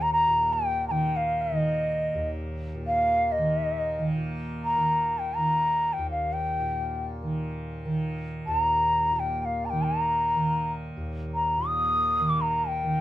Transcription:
Already playing: D#2 A#2 D#3
0.02 A#5
0.13 A#5
0.27 A#2
0.53 G5
0.88 D#3 G5 A#5
1.16 F5
1.42 D#5
1.52 D#3
2.15 D#2
2.75 A#2
2.87 F5
3.32 D#5
3.38 D#3
3.99 D#3
4.15 A#2
4.64 A#5
4.76 D#3
5.19 G5
5.36 D#3 A#5
5.93 G5
5.98 D#2
6.11 F5
6.33 G5
6.60 A#2
7.22 D#3
7.85 D#3
8.47 D#2 A5
8.60 A#5
9.11 A#2
9.16 G5 A#5
9.42 F5 G5
9.65 A#5
9.70 D#3 G5
9.84 A#5
10.35 D#3
10.96 D#2
11.35 A#5
11.57 A#2
11.67 D#6
12.20 D#3
12.29 D6
12.41 A#5
12.68 G5
12.83 D#3

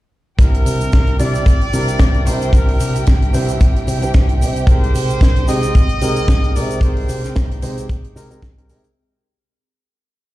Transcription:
0.38 C2 G3 C4 D4 E4 G4 A#4 G5, kick, closed hi-hat, shaker
0.54 closed hi-hat
0.66 C3, open hi-hat, shaker
0.81 muted fingered electric bass stroke, closed hi-hat, shaker
0.93 C2, kick, snare, closed hi-hat, shaker
1.07 closed hi-hat
1.19 C3 G3 C4 D4 E4 D5, open hi-hat, shaker
1.35 closed hi-hat, shaker
1.46 C2, kick, closed hi-hat, shaker
1.61 closed hi-hat
1.73 C3 G3 C4 D4 E4 A#4, open hi-hat, shaker
1.88 muted fingered electric bass stroke, closed hi-hat, shaker
1.99 C2, kick, snare, closed hi-hat, shaker
2.14 closed hi-hat
2.26 C3 G3 C4 D4 E4 A#4 C5, open hi-hat, shaker
2.41 closed hi-hat, shaker
2.53 C2 G3 C4 D4 E4 A#4, kick, closed hi-hat, shaker
2.68 open hi-hat
2.80 C3, open hi-hat, shaker
2.95 muted fingered electric bass stroke, closed hi-hat, shaker
3.06 C2, kick, snare, closed hi-hat, shaker
3.22 closed hi-hat
3.33 C3 G3 C4 D4 E4 C5, open hi-hat, shaker
3.49 closed hi-hat, shaker
3.61 C2, kick, closed hi-hat, shaker
3.76 closed hi-hat
3.87 C3, open hi-hat, shaker
4.01 G3 C4 D4 E4 C5, muted fingered electric bass stroke, closed hi-hat, shaker
4.14 C2, kick, snare, closed hi-hat, shaker
4.29 closed hi-hat
4.41 C3, open hi-hat, shaker
4.56 closed hi-hat, shaker
4.67 C2 G#3 C4 D#4 G4 A#4 C5, kick, closed hi-hat, shaker
4.84 closed hi-hat
4.94 C3, open hi-hat, shaker
5.09 muted fingered electric bass stroke, closed hi-hat, shaker
5.21 C2, kick, snare, closed hi-hat, shaker
5.36 closed hi-hat
5.47 C3 G#3 C4 D#4 G4 D#5, open hi-hat, shaker
5.62 closed hi-hat, shaker
5.75 C2, kick, closed hi-hat, shaker
5.89 closed hi-hat
6.01 C3 G#3 C4 D#4 G4 A#4, open hi-hat, shaker
6.16 muted fingered electric bass stroke, closed hi-hat, shaker
6.28 C2, kick, snare, closed hi-hat, shaker
6.44 closed hi-hat
6.55 C3 G#3 C4 D#4 G4 A#4 D5, open hi-hat, shaker
6.70 closed hi-hat, shaker
6.81 C2 G#3 C4 D#4 G4 A#4 C5, kick, closed hi-hat, shaker
6.97 open hi-hat
7.09 C3, open hi-hat, shaker
7.24 muted fingered electric bass stroke, snare, closed hi-hat, shaker
7.36 C2, kick, snare, closed hi-hat, shaker
7.51 closed hi-hat
7.62 C3 G#3 C4 D#4 G4 C5, open hi-hat, shaker
7.78 closed hi-hat, shaker
7.89 C2, kick, closed hi-hat, shaker
8.04 closed hi-hat
8.16 C3 G#3 C4 D#4 G4 A#4, open hi-hat, shaker
8.30 G#3 C4 D#4 G4 A#4, muted fingered electric bass stroke, closed hi-hat, shaker
8.43 C2, kick, snare, closed hi-hat, shaker
8.57 G#3 C4 D#4 G4 A#4, closed hi-hat
8.69 C3 G#3 C4 D#4 G4 A#4, open hi-hat, shaker
8.84 closed hi-hat, shaker

